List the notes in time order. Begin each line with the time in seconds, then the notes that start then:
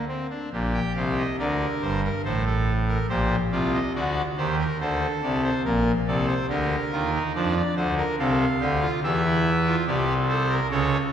0.08 C4
0.30 D4
0.53 A#1 A#2 G4
0.74 G5
0.96 C2 C3 F5
1.18 D#5
1.39 D2 D3 A#4 D5
1.82 G1 G2 C5
2.04 A#4
2.25 A1 A2 A4 C5
2.46 A4
2.88 A#4
3.09 A#1 A#2 G4 C5
3.52 C2 C3 F4 D5
3.74 D#5
3.95 D2 D3 F#4 D5
4.38 D#2 D#3 G4 C5
4.59 A#4
4.80 D2 D3 A4 C5
5.23 C2 C3 D5
5.44 C5
5.65 A#1 A#2 A#4
6.07 C2 C3 A4 D5
6.28 C5
6.49 D2 D3 G4 A#4
6.92 D#2 D#3 F4
7.13 D#4
7.35 F2 F3 D4 D5
7.56 D5
7.76 D2 D3 C5
7.97 A#4
8.19 C2 C3 A4 F5
8.61 D2 D3 G4
8.82 F4
9.03 E2 E3 G4 E5
9.25 E4
9.66 F4
9.87 C2 C3 G4 D5
10.29 A4 C5
10.49 A#4
10.71 C#2 C#3 A4 C#5